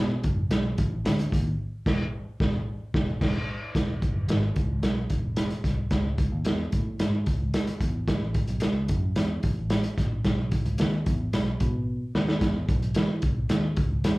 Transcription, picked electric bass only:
0.00 0.17 B2 loud
0.25 0.46 F#1 medium
0.50 0.72 B1 loud
0.78 0.99 A1 loud
1.05 1.26 D2 loud
1.33 1.53 D#2 loud
1.86 2.04 E1 loud
2.40 2.59 E1 loud
2.94 3.12 E1 loud
3.21 3.39 E1 loud
3.75 4.07 E1 loud
4.14 4.25 F#1 medium
4.28 4.50 G#1 medium
4.56 4.77 C#2 medium
4.83 5.04 B1 medium
5.11 5.53 E1 medium
5.64 5.85 C2 medium
5.91 6.23 C#2 loud
6.32 6.43 D#2 medium
6.45 6.66 E2 loud
6.73 6.94 A2 medium
7.01 7.22 G#2 medium
7.27 7.48 C#2 medium
7.68 muted picked electric bass stroke soft
7.80 8.02 E2 loud
8.08 8.40 A1 loud
8.49 8.59 B1 medium
8.63 8.84 C#2 loud
8.89 9.10 F#2 medium
9.17 9.38 E2 medium
9.44 9.86 A1 loud
9.98 10.19 A#1 medium
10.25 10.57 B1 loud
10.65 10.76 C#2 medium
10.79 11.00 D#2 loud
11.07 11.28 E2 medium
11.33 11.54 B1 loud
11.61 12.03 B2 medium
12.15 12.36 D#2 loud
12.41 12.62 E2 loud
12.69 12.90 B1 medium
12.96 13.17 E3 loud
13.23 13.44 B1 medium
13.50 13.71 D#2 medium
13.77 13.98 C#2 medium
14.04 14.18 E2 medium

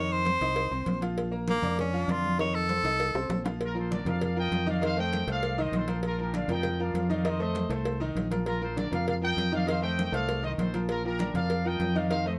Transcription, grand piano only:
0.00 0.21 D#3 medium
0.00 0.21 D#4 medium
0.00 0.21 D#5 medium
0.26 0.38 C4 medium
0.26 0.38 C5 medium
0.26 0.39 C6 medium
0.41 0.66 D#4 medium
0.41 0.66 D#5 medium
0.41 0.67 D#6 medium
0.71 0.96 C4 medium
0.71 0.96 C5 medium
0.71 0.97 C6 medium
1.01 1.26 F3 medium
1.01 1.27 F4 medium
1.01 1.27 F5 medium
1.31 1.57 A#3 medium
1.31 1.57 A#4 medium
1.31 1.57 A#5 medium
1.62 1.87 D4 medium
1.62 1.88 D5 medium
1.62 1.88 D6 medium
1.93 2.06 F3 medium
1.93 2.06 F4 medium
1.93 2.06 F5 medium
2.08 2.33 D3 medium
2.08 2.33 D4 medium
2.08 2.34 D5 loud
2.38 2.63 D#3 loud
2.38 2.64 D#4 medium
2.38 2.64 D#5 loud
2.70 2.82 C4 medium
2.70 2.82 C5 medium
2.70 2.82 C6 medium
2.84 3.09 D#4 medium
2.84 3.10 D#5 medium
2.84 3.10 D#6 medium
3.14 3.40 C4 medium
3.14 3.40 C5 medium
3.14 3.40 C6 medium
3.44 3.57 F3 medium
3.44 3.57 F4 medium
3.44 3.58 F5 medium
3.74 3.87 F3 medium
3.74 3.88 F4 medium
3.74 3.88 A#4 medium
3.91 4.03 D3 medium
3.91 4.03 D4 medium
3.91 4.04 D5 medium
4.06 4.31 F3 medium
4.06 4.31 F4 medium
4.06 4.31 A#4 medium
4.36 4.61 F3 medium
4.36 4.61 F4 medium
4.36 4.61 A#4 medium
4.66 4.79 D#3 medium
4.66 4.79 D#4 loud
4.66 4.79 D#5 loud
4.81 4.94 D#3 medium
4.81 4.94 D#4 medium
4.81 4.94 D#5 loud
4.97 5.22 A3 medium
4.97 5.22 A4 medium
4.97 5.22 C5 medium
5.27 5.52 A3 medium
5.27 5.52 A4 medium
5.27 5.53 C5 medium
5.58 5.83 D#3 loud
5.58 5.83 D#4 medium
5.58 5.83 D#5 loud
5.88 6.13 F3 medium
5.88 6.13 F4 medium
5.88 6.13 A#4 medium
6.19 6.31 F3 medium
6.19 6.31 F4 medium
6.19 6.31 A#4 medium
6.33 6.46 D3 medium
6.33 6.46 D4 medium
6.33 6.47 D5 medium
6.49 6.74 F3 medium
6.49 6.74 F4 medium
6.49 6.74 A#4 medium
6.79 7.04 F3 medium
6.79 7.05 F4 medium
6.79 7.05 A#4 medium
7.09 7.22 D#3 medium
7.09 7.22 D#4 loud
7.09 7.22 D#5 medium
7.25 7.37 D#3 loud
7.25 7.37 D#4 loud
7.25 7.37 D#5 loud
7.40 7.65 A3 medium
7.40 7.65 A4 medium
7.40 7.65 C5 medium
7.70 7.95 A3 medium
7.70 7.95 A4 medium
7.70 7.95 C5 medium
8.00 8.25 D#3 loud
8.00 8.26 D#4 loud
8.00 8.26 D#5 medium
8.30 8.56 F3 medium
8.30 8.56 F4 medium
8.30 8.56 A#4 medium
8.61 8.74 F3 medium
8.61 8.74 F4 medium
8.61 8.74 A#4 medium
8.76 8.89 D3 medium
8.76 8.89 D4 medium
8.76 8.89 D5 medium
8.91 9.16 F3 medium
8.91 9.16 F4 medium
8.91 9.17 A#4 medium
9.21 9.47 F3 medium
9.21 9.47 F4 medium
9.21 9.47 A#4 medium
9.52 9.65 D#3 loud
9.52 9.65 D#4 medium
9.52 9.65 D#5 medium
9.67 9.80 D#3 loud
9.67 9.80 D#4 medium
9.67 9.80 D#5 loud
9.82 10.07 A3 medium
9.82 10.08 A4 medium
9.82 10.08 C5 medium
10.12 10.37 A3 medium
10.12 10.38 A4 medium
10.12 10.38 C5 medium
10.43 10.68 D#3 loud
10.43 10.68 D#4 medium
10.43 10.68 D#5 medium
10.74 10.99 F3 medium
10.74 10.99 F4 medium
10.74 10.99 A#4 medium
11.05 11.17 F3 medium
11.05 11.17 F4 medium
11.05 11.17 A#4 medium
11.19 11.32 D3 medium
11.19 11.32 D4 medium
11.19 11.32 D5 medium
11.35 11.60 F3 medium
11.35 11.60 F4 medium
11.35 11.60 A#4 medium
11.65 11.90 F3 medium
11.65 11.90 F4 medium
11.65 11.90 A#4 medium
11.95 12.08 D#3 medium
11.95 12.08 D#4 loud
11.95 12.08 D#5 loud
12.10 12.23 D#3 loud
12.10 12.23 D#4 medium
12.10 12.23 D#5 medium
12.26 12.39 A3 medium
12.26 12.39 A4 medium
12.26 12.39 C5 medium

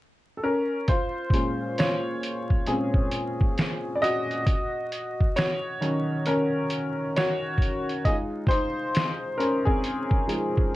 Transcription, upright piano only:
0.37 0.43 A4 medium
0.43 0.85 C#4 medium
0.43 0.89 A#4 medium
0.89 1.74 F4 medium
0.89 1.81 C5 medium
1.33 1.97 A#2 soft
1.33 1.97 G#3 soft
1.33 1.98 C#4 soft
1.79 2.64 F4 medium
1.79 2.70 C#5 medium
2.67 3.08 A#2 soft
2.67 3.08 G#3 soft
2.67 3.93 C4 medium
2.67 3.08 C#4 soft
2.67 3.92 G#4 medium
3.95 4.01 D5 medium
4.02 5.33 F#4 medium
4.02 5.32 D#5 loud
5.36 6.22 F#4 medium
5.36 6.28 C#5 loud
5.81 7.11 D#3 medium
5.81 7.11 F#3 soft
5.81 6.27 C#4 medium
6.27 7.12 C#4 medium
6.27 7.18 A#4 medium
7.16 7.85 F#4 medium
7.16 7.85 C#5 loud
8.05 10.26 G#3 soft
8.05 8.48 D#4 medium
8.05 10.76 F4 medium
8.05 8.17 G#4 medium
8.05 8.15 D#5 loud
8.48 9.35 D#4 medium
8.48 9.34 C5 loud
9.38 9.66 C#4 medium
9.38 9.67 A#4 medium
9.65 10.76 C4 medium
9.65 10.76 G#4 medium
10.27 10.68 F3 soft
10.27 10.69 G#3 soft
10.27 10.69 D#4 soft

